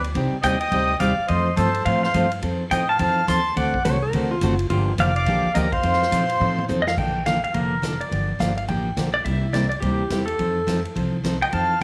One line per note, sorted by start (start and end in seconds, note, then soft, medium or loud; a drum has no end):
0.00 0.14 D2 medium
0.04 ride medium
0.15 0.31 C2 medium
0.15 0.35 C3 medium
0.15 0.35 G3 medium
0.15 0.35 C4 medium
0.15 0.35 D#4 medium
0.15 0.35 G4 medium
0.15 0.35 D5 medium
0.15 kick soft
0.15 ride medium
0.33 muted upright bass stroke soft
0.42 0.71 D#2 medium
0.42 0.55 C3 medium
0.42 0.55 G3 medium
0.42 0.55 C4 medium
0.42 0.55 D#4 medium
0.42 0.55 G4 medium
0.42 0.55 D5 medium
0.42 0.58 D#5 medium
0.42 0.60 G5 loud
0.42 kick soft
0.42 hi-hat pedal medium
0.42 ride medium
0.60 0.97 D#5 loud
0.60 1.00 G5 loud
0.60 ride soft
0.72 0.99 D2 medium
0.72 0.92 C3 medium
0.72 0.92 G3 medium
0.72 0.92 C4 medium
0.72 0.92 D#4 medium
0.72 0.92 G4 medium
0.72 0.92 D5 medium
0.72 kick soft
0.72 ride medium
1.00 1.17 D#2 medium
1.00 1.11 C3 medium
1.00 1.11 G3 medium
1.00 1.11 C4 medium
1.00 1.12 D#4 medium
1.00 1.12 G4 medium
1.00 1.27 D5 medium
1.00 1.12 D5 medium
1.00 1.27 F5 medium
1.00 kick soft
1.00 hi-hat pedal medium
1.00 ride medium
1.18 muted upright bass stroke soft
1.28 1.56 F2 medium
1.28 1.48 F3 medium
1.28 1.48 A3 medium
1.28 1.49 C4 medium
1.28 1.49 F4 medium
1.28 1.49 A4 medium
1.28 1.55 C5 medium
1.28 1.58 D#5 medium
1.28 kick soft
1.28 ride medium
1.56 1.85 G2 medium
1.56 1.68 F3 medium
1.56 1.68 A3 medium
1.56 1.68 C4 medium
1.56 1.69 F4 medium
1.56 1.83 A4 medium
1.56 1.69 A4 medium
1.56 1.87 C5 medium
1.56 kick soft
1.56 hi-hat pedal medium
1.56 ride medium
1.75 ride medium
1.85 2.13 A2 medium
1.85 2.05 F3 medium
1.85 2.06 A3 medium
1.85 2.06 C4 medium
1.85 2.06 F4 medium
1.85 2.06 A4 medium
1.85 2.02 C5 medium
1.85 2.02 F5 medium
1.85 kick soft
1.85 ride medium
2.03 2.30 C5 medium
2.03 2.30 F5 medium
2.03 snare soft
2.14 2.42 G2 medium
2.14 2.25 F3 medium
2.14 2.25 A3 medium
2.14 2.25 C4 medium
2.14 2.25 F4 medium
2.14 2.26 A4 medium
2.14 kick soft
2.14 hi-hat pedal soft
2.14 ride medium
2.32 ride medium
2.42 2.70 F2 medium
2.42 2.62 F3 medium
2.42 2.62 C4 medium
2.42 2.63 D#4 medium
2.42 2.63 A4 medium
2.42 kick soft
2.42 ride medium
2.71 2.99 A2 medium
2.71 2.82 F3 medium
2.71 2.82 C4 medium
2.71 2.82 D#4 medium
2.71 2.83 A4 medium
2.71 2.88 D#5 medium
2.71 2.88 G5 medium
2.71 kick soft
2.71 hi-hat pedal soft
2.71 ride medium
2.89 2.99 F5 medium
2.89 2.99 A5 medium
2.99 3.27 F2 medium
2.99 3.19 F3 medium
2.99 3.19 C4 medium
2.99 3.19 D#4 medium
2.99 3.20 A4 medium
2.99 3.26 F5 medium
2.99 3.26 A5 loud
2.99 kick soft
2.99 ride medium
3.27 3.56 D#2 medium
3.27 3.39 F3 medium
3.27 3.39 C4 medium
3.27 3.39 D#4 medium
3.27 3.39 A4 medium
3.27 3.55 A5 medium
3.27 3.55 C6 loud
3.27 kick soft
3.27 hi-hat pedal medium
3.27 ride medium
3.56 3.84 D2 medium
3.56 3.76 D3 medium
3.56 3.76 A3 medium
3.56 3.76 C4 medium
3.56 3.76 F#4 medium
3.56 3.76 A4 medium
3.56 3.83 D5 medium
3.56 3.83 F#5 medium
3.56 kick soft
3.56 ride medium
3.74 kick medium
3.84 4.12 C2 medium
3.84 3.96 D3 medium
3.84 3.96 A3 medium
3.84 3.96 C4 medium
3.84 3.96 F#4 medium
3.84 3.96 A4 medium
3.84 4.02 C#5 loud
3.84 hi-hat pedal medium
3.84 ride medium
4.02 4.30 A#4 medium
4.13 4.41 D2 medium
4.13 4.33 D3 medium
4.13 4.33 A3 medium
4.13 4.33 C4 medium
4.13 4.34 F#4 medium
4.13 4.34 A4 medium
4.13 kick soft
4.13 ride medium
4.31 4.69 F4 medium
4.41 4.69 F#1 medium
4.41 4.53 D3 medium
4.41 4.53 A3 medium
4.41 4.53 C4 medium
4.41 4.53 F#4 medium
4.41 4.54 A4 medium
4.41 kick soft
4.41 hi-hat pedal medium
4.41 ride medium
4.59 ride medium
4.70 4.98 G1 medium
4.70 4.90 D3 medium
4.70 4.90 F3 medium
4.70 4.90 A#3 medium
4.70 4.90 D4 medium
4.70 4.92 F4 loud
4.70 4.91 G4 medium
4.70 kick soft
4.70 ride medium
4.98 5.26 F1 medium
4.98 5.09 D3 medium
4.98 5.10 F3 medium
4.98 5.10 A#3 medium
4.98 5.10 D4 medium
4.98 5.10 G4 medium
4.98 5.14 D5 medium
4.98 5.15 F5 loud
4.98 kick soft
4.98 hi-hat pedal medium
4.98 ride medium
5.16 5.52 D5 medium
5.16 5.57 F5 loud
5.16 ride soft
5.26 5.43 A#1 medium
5.26 5.47 D3 medium
5.26 5.47 F3 medium
5.26 5.47 A#3 medium
5.26 5.47 D4 medium
5.26 5.47 G4 medium
5.26 kick soft
5.26 ride medium
5.45 muted upright bass stroke soft
5.55 5.83 D2 medium
5.55 5.66 D3 medium
5.55 5.66 F3 medium
5.55 5.67 A#3 medium
5.55 5.67 D4 medium
5.55 5.67 G4 medium
5.55 5.71 A#4 medium
5.55 5.73 D#5 medium
5.55 kick soft
5.55 hi-hat pedal medium
5.55 ride medium
5.72 6.65 C5 medium
5.72 6.65 F5 loud
5.72 kick medium
5.72 ride medium
5.83 6.11 F2 medium
5.83 6.03 F3 medium
5.83 6.03 C4 medium
5.83 6.03 D#4 medium
5.83 6.04 A4 medium
5.83 ride medium
5.93 snare soft
6.02 snare soft
6.11 6.40 A#2 medium
6.11 6.23 F3 medium
6.11 6.23 C4 medium
6.11 6.23 D#4 medium
6.11 6.24 A4 medium
6.11 kick soft
6.11 hi-hat pedal medium
6.11 ride medium
6.29 ride soft
6.40 6.68 A2 medium
6.40 6.60 F3 medium
6.40 6.60 C4 medium
6.40 6.61 D#4 medium
6.40 6.61 A4 medium
6.58 high tom medium
6.68 6.97 F2 medium
6.68 6.80 F3 medium
6.68 6.80 C4 medium
6.68 6.80 D#4 medium
6.68 6.80 A4 medium
6.68 hi-hat pedal soft
6.68 high tom medium
6.82 6.87 D#5 medium
6.87 6.97 F5 medium
6.87 snare medium
6.97 7.43 A#1 medium
6.97 7.17 D3 soft
6.97 7.17 F3 soft
6.97 7.18 A#3 soft
6.97 7.18 D4 soft
6.97 7.18 A4 medium
6.97 7.26 G5 loud
6.97 kick medium
6.97 crash medium
7.26 7.37 D3 medium
7.26 7.37 F3 medium
7.26 7.38 A#3 medium
7.26 7.38 D4 medium
7.26 7.38 A4 medium
7.26 7.43 F5 medium
7.26 kick soft
7.26 snare medium
7.26 hi-hat pedal medium
7.26 ride medium
7.44 7.55 F5 medium
7.44 ride soft
7.54 8.00 F1 medium
7.54 7.74 D3 medium
7.54 7.74 F3 medium
7.54 7.74 A#3 medium
7.54 7.74 D4 medium
7.54 7.75 A4 medium
7.54 8.02 A#4 medium
7.54 kick soft
7.54 ride medium
7.82 7.94 D3 medium
7.82 7.94 F3 medium
7.82 7.94 A#3 medium
7.82 7.94 D4 medium
7.82 7.94 A4 medium
7.82 kick soft
7.82 snare medium
7.82 hi-hat pedal medium
7.82 ride medium
8.01 8.54 D5 medium
8.01 ride soft
8.11 8.34 G1 medium
8.11 8.31 D3 medium
8.11 8.31 F3 medium
8.11 8.32 A#3 medium
8.11 8.31 D4 medium
8.11 8.32 G4 medium
8.11 kick soft
8.11 ride medium
8.39 8.64 G1 medium
8.39 8.51 D3 medium
8.39 8.51 F3 medium
8.39 8.51 A#3 medium
8.39 8.51 D4 medium
8.39 8.51 G4 medium
8.39 8.56 F5 medium
8.39 kick soft
8.39 snare medium
8.39 hi-hat pedal medium
8.39 ride medium
8.57 8.68 F5 medium
8.57 ride soft
8.68 8.93 A1 medium
8.68 8.88 D3 medium
8.68 8.88 F3 medium
8.68 8.89 A#3 medium
8.68 8.89 D4 medium
8.68 8.89 G4 medium
8.68 9.05 G5 medium
8.68 kick soft
8.68 ride medium
8.97 9.21 A#1 medium
8.97 9.08 D3 medium
8.97 9.08 F3 medium
8.97 9.08 A#3 medium
8.97 9.08 D4 medium
8.97 9.09 G4 medium
8.97 kick soft
8.97 snare medium
8.97 hi-hat pedal medium
8.97 ride medium
9.14 9.25 D5 medium
9.24 9.71 C2 medium
9.24 9.45 C3 soft
9.24 9.45 G3 soft
9.24 9.45 A#3 soft
9.24 9.45 E4 medium
9.24 9.45 G4 medium
9.24 9.54 E5 loud
9.24 kick soft
9.24 ride medium
9.53 9.65 C3 medium
9.53 9.65 G3 medium
9.53 9.65 A#3 medium
9.53 9.65 E4 medium
9.53 9.65 G4 medium
9.53 9.68 D5 loud
9.53 kick soft
9.53 snare medium
9.53 hi-hat pedal medium
9.53 ride medium
9.69 9.74 D5 medium
9.69 ride soft
9.80 10.06 D2 medium
9.80 10.02 C3 medium
9.80 10.02 G3 medium
9.80 10.02 A#3 medium
9.80 10.02 E4 medium
9.80 10.29 G4 medium
9.80 10.02 G4 medium
9.80 kick soft
9.80 ride medium
10.10 10.35 E2 medium
10.10 10.22 C3 medium
10.10 10.22 G3 medium
10.10 10.22 A#3 medium
10.10 10.22 E4 medium
10.10 10.23 G4 medium
10.10 kick soft
10.10 snare medium
10.10 hi-hat pedal soft
10.10 ride medium
10.26 10.80 A4 medium
10.26 ride soft
10.39 10.85 F2 medium
10.39 10.59 F3 medium
10.39 10.59 C4 medium
10.39 10.59 D#4 medium
10.39 10.60 A4 medium
10.39 kick soft
10.39 ride medium
10.67 10.78 F3 medium
10.67 10.79 C4 medium
10.67 10.79 D#4 medium
10.67 10.79 A4 medium
10.67 kick soft
10.67 snare medium
10.67 hi-hat pedal medium
10.67 ride medium
10.85 ride soft
10.95 11.42 C2 medium
10.95 11.15 F3 medium
10.95 11.16 C4 medium
10.95 11.16 D#4 medium
10.95 11.16 A4 medium
10.95 kick soft
10.95 ride medium
11.24 11.35 F3 medium
11.24 11.36 C4 medium
11.24 11.36 D#4 medium
11.24 11.36 A4 medium
11.24 kick soft
11.24 snare medium
11.24 hi-hat pedal medium
11.24 ride medium
11.42 11.47 D#5 medium
11.42 11.47 G5 loud
11.42 ride soft
11.52 11.83 F2 medium
11.52 11.72 F3 medium
11.52 11.73 C4 soft
11.52 11.73 D#4 medium
11.52 11.73 A4 medium
11.52 11.80 F5 medium
11.52 11.81 A5 loud
11.52 kick soft
11.52 ride medium